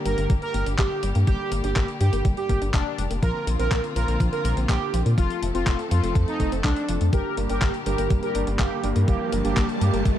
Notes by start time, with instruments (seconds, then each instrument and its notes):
Already playing: string section D3 G3 A#3 G4
0.06 analog synth bass G1, synth arpeggio sound G3, analog polysynth A#4, closed hi-hat
0.18 analog synth bass G1, synth arpeggio sound A#3, closed hi-hat
0.30 analog synth bass G1, synth arpeggio sound G3, kick, closed hi-hat
0.42 analog polysynth A#4, closed hi-hat
0.54 analog synth bass G1, synth arpeggio sound A#3, closed hi-hat
0.66 analog synth bass G1, synth arpeggio sound D4, closed hi-hat
0.79 analog synth bass G1, synth arpeggio sound A#3, analog polysynth G4, kick, clap, closed hi-hat
1.03 analog synth bass G1, synth arpeggio sound G3, closed hi-hat
1.15 analog synth bass G2, synth arpeggio sound A#3, closed hi-hat
1.27 analog synth bass G1, synth arpeggio sound G3, analog polysynth G4, kick, closed hi-hat
1.52 analog synth bass G1, synth arpeggio sound A#3, closed hi-hat
1.64 analog synth bass G1, synth arpeggio sound D4, analog polysynth G4, closed hi-hat
1.76 analog synth bass G1, synth arpeggio sound A#3, kick, clap, closed hi-hat
1.88 closed hi-hat
2.01 analog synth bass G2, synth arpeggio sound G3, analog polysynth G4, closed hi-hat
2.13 analog synth bass G1, synth arpeggio sound A#3, closed hi-hat
2.25 analog synth bass G1, synth arpeggio sound G3, kick, closed hi-hat
2.37 analog polysynth G4, closed hi-hat
2.49 analog synth bass G1, synth arpeggio sound A#3, kick, closed hi-hat
2.62 analog synth bass G1, synth arpeggio sound D4, closed hi-hat
2.74 analog synth bass F1, synth arpeggio sound A#3, analog polysynth D4, kick, clap, closed hi-hat
2.98 analog synth bass F1, synth arpeggio sound G3, closed hi-hat
3.11 analog synth bass F1, synth arpeggio sound A#3, closed hi-hat
3.22 analog synth bass A#1, string section D3 A#3 C4 F4, synth arpeggio sound F3, analog polysynth A#4, kick, closed hi-hat
3.47 analog synth bass A#1, synth arpeggio sound A#3, closed hi-hat
3.59 analog synth bass A#1, synth arpeggio sound C4, analog polysynth A#4, closed hi-hat
3.71 analog synth bass A#1, synth arpeggio sound A#3, kick, clap, closed hi-hat
3.84 closed hi-hat
3.96 analog synth bass A#1, synth arpeggio sound F3, analog polysynth A#4, closed hi-hat
4.08 analog synth bass A#1, synth arpeggio sound A#3, closed hi-hat
4.20 analog synth bass A#1, synth arpeggio sound F3, kick, closed hi-hat
4.32 analog polysynth A#4, closed hi-hat
4.44 analog synth bass A#1, synth arpeggio sound A#3, closed hi-hat
4.57 analog synth bass A#1, synth arpeggio sound C4, closed hi-hat
4.69 analog synth bass A#1, synth arpeggio sound A#3, analog polysynth G4, kick, clap, closed hi-hat
4.94 analog synth bass A#1, synth arpeggio sound F3, closed hi-hat
5.06 analog synth bass A#2, synth arpeggio sound A#3, closed hi-hat
5.18 analog synth bass F1, string section F3 A3 C4 A4, synth arpeggio sound F3, analog polysynth F4, kick, closed hi-hat
5.30 closed hi-hat
5.42 analog synth bass F1, synth arpeggio sound A3, closed hi-hat
5.54 analog synth bass F1, synth arpeggio sound C4, analog polysynth F4, closed hi-hat
5.67 analog synth bass F1, synth arpeggio sound A3, kick, clap, closed hi-hat
5.79 closed hi-hat
5.91 analog synth bass F2, synth arpeggio sound F3, analog polysynth F4, closed hi-hat
6.03 analog synth bass F1, synth arpeggio sound A3, closed hi-hat
6.15 analog synth bass F2, synth arpeggio sound F3, kick, closed hi-hat
6.28 analog polysynth D#4, closed hi-hat
6.40 analog synth bass F1, synth arpeggio sound A3, kick, closed hi-hat
6.52 analog synth bass F1, synth arpeggio sound C4, closed hi-hat
6.64 analog synth bass C2, synth arpeggio sound A3, analog polysynth D4, kick, clap, closed hi-hat
6.76 closed hi-hat
6.89 analog synth bass F1, synth arpeggio sound F3, closed hi-hat
7.01 analog synth bass F2, synth arpeggio sound A3, closed hi-hat
7.13 analog synth bass G1, string section D3 G3 A#3 G4, synth arpeggio sound G3, analog polysynth G4 A#4, kick, closed hi-hat, riser
7.37 analog synth bass G1, electric grand piano G2 A#3 D4 G4 A#4, synth arpeggio sound A#3, closed hi-hat
7.50 analog synth bass G1, synth arpeggio sound D4, analog polysynth G4 A#4, closed hi-hat
7.62 analog synth bass G1, synth arpeggio sound A#3, kick, clap, closed hi-hat
7.74 closed hi-hat
7.86 analog synth bass G1, electric grand piano G2 A#3 D4 G4 A#4, synth arpeggio sound G3, analog polysynth G4 A#4, closed hi-hat
7.98 analog synth bass G1, synth arpeggio sound A#3, closed hi-hat
8.10 analog synth bass G1, synth arpeggio sound G3, kick, closed hi-hat
8.23 analog polysynth G4 A#4, closed hi-hat
8.35 analog synth bass G1, electric grand piano G2 A#3 D4 G4 D5, synth arpeggio sound A#3, closed hi-hat
8.47 analog synth bass G1, synth arpeggio sound D4, closed hi-hat
8.59 analog synth bass G1, analog polysynth A#3 G4, synth arpeggio sound A#3, kick, clap, closed hi-hat
8.84 analog synth bass G1, electric grand piano G2 A#3 D4 G4 A#4, synth arpeggio sound G3, closed hi-hat
8.96 analog synth bass G2, synth arpeggio sound A#3, closed hi-hat
9.08 analog synth bass G1, synth arpeggio sound G3, analog polysynth A#3 G4, string section A5, kick, closed hi-hat
9.32 analog synth bass G1, electric grand piano G2 A#3 D4 G4 A#4, synth arpeggio sound A#3, closed hi-hat
9.45 analog synth bass G1, analog polysynth A#3 G4, synth arpeggio sound D4, closed hi-hat
9.57 analog synth bass G1, synth arpeggio sound A#3, kick, clap, closed hi-hat
9.69 closed hi-hat
9.81 analog synth bass G2, electric grand piano G2 A#3 D4 G4 A#4, synth arpeggio sound G3, analog polysynth A#3 G4, closed hi-hat
9.93 analog synth bass G1, synth arpeggio sound A#3, closed hi-hat
10.05 analog synth bass G1, synth arpeggio sound G3, kick, closed hi-hat